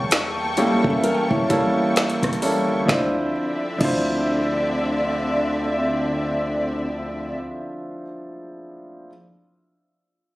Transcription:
Already playing: E2 G3 A#3 C#4 E4 G#4 A4 D5 G5 A5 C#6
0.11 snare, closed hi-hat
0.57 C#2 G3 A#3 C#4 E4 G4 A4 C#5, closed hi-hat
0.84 A1 C#4 A4, kick
0.90 E5
1.04 C#4 A#4, closed hi-hat
1.14 G5
1.30 A1 E4 C#5, kick
1.49 G3 A#3 C#4 E4 A4, kick, closed hi-hat
1.96 snare, closed hi-hat
2.10 closed hi-hat
2.23 A1, kick, cross-stick, closed hi-hat
2.33 closed hi-hat
2.42 G3 A#3 C#4 E4 A4, open hi-hat
2.69 G1
2.86 D2 D3 F3 C4 D4 D5 E5, kick, snare
2.90 E4 C5
3.78 D2 F3 D4, kick, crash
3.82 E4 C5

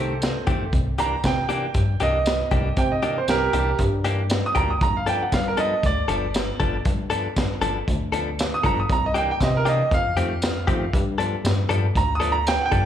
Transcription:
Already playing: C2 D#3 A3 C4 G4 A4 C5
0.22 snare, closed hi-hat, tambourine
0.47 F2 D#3 A3 C4 G4, kick, closed hi-hat
0.73 C2, kick, closed hi-hat
0.98 E3 A#3 D4 G4 A#5, closed hi-hat
1.24 C3 G5, kick, snare, closed hi-hat, tambourine
1.49 E3 A#3 D4 G4, closed hi-hat
1.74 G2, kick, closed hi-hat
2.00 C2 E3 A#3 D4 G4 D#5, closed hi-hat
2.26 snare, closed hi-hat, tambourine
2.51 C2 E3 A#3 D4 G4, kick, closed hi-hat
2.77 C3 G5, kick, closed hi-hat
2.92 D#5
3.02 E3 A#3 D4 G4, closed hi-hat
3.18 C5
3.28 C2 G4 A#4, snare, closed hi-hat, tambourine
3.53 C2 E3 A#3 D4 G4, closed hi-hat
3.79 G2, kick, closed hi-hat
4.04 E3 A#3 D4 G4, closed hi-hat
4.30 snare, closed hi-hat, tambourine
4.46 D#6
4.55 D2 E3 A#3 D4 G4 A#5, kick, closed hi-hat
4.70 D#6
4.81 G1 A#5, kick, closed hi-hat
4.97 F5
5.06 F3 B3 D4 A4 G5, closed hi-hat
5.22 F#5
5.32 G2 F5, kick, snare, closed hi-hat, tambourine
5.48 A#4
5.57 F3 B3 D4 A4 D#5, closed hi-hat
5.83 D2 D5, kick, closed hi-hat
6.08 G1 F3 B3 D4 A4, closed hi-hat
6.34 snare, closed hi-hat, tambourine
6.60 G1 F3 B3 D4 A4, kick, closed hi-hat
6.85 G2, kick, closed hi-hat
7.10 F3 B3 D4 A4, closed hi-hat
7.36 G1, kick, snare, closed hi-hat, tambourine
7.62 G1 F3 B3 D4 A4, closed hi-hat
7.88 D2, kick, closed hi-hat
8.12 F3 B3 D4 A4, closed hi-hat
8.39 snare, closed hi-hat, tambourine
8.54 D#6
8.63 G1 F3 B3 D4 A4 A#5, kick, closed hi-hat
8.80 D#6
8.89 C2 A#5, kick, closed hi-hat
9.06 D#5
9.14 E3 A#3 D4 G4 G5, closed hi-hat
9.31 G5
9.41 C3 D#5, kick, snare, closed hi-hat, tambourine
9.57 A#4
9.65 E3 A#3 D4 G4 D#5, closed hi-hat
9.91 F2 F5, kick, closed hi-hat
10.17 F2 D#3 A3 C4 G4, closed hi-hat
10.42 snare, closed hi-hat, tambourine
10.67 F2 D#3 A3 C4 G4, kick, closed hi-hat
10.93 G2, kick, closed hi-hat
11.18 F3 B3 D4 A4, closed hi-hat
11.45 G2, snare, closed hi-hat, tambourine
11.69 G2 F3 B3 D4 A4, closed hi-hat
11.95 D2 A#5, kick, closed hi-hat
12.15 D#6
12.20 F3 B3 D4 A4, closed hi-hat
12.32 A#5
12.47 G5, snare, closed hi-hat, tambourine
12.61 F#5
12.66 G5
12.72 G2 F3 B3 D4 A4, kick, closed hi-hat

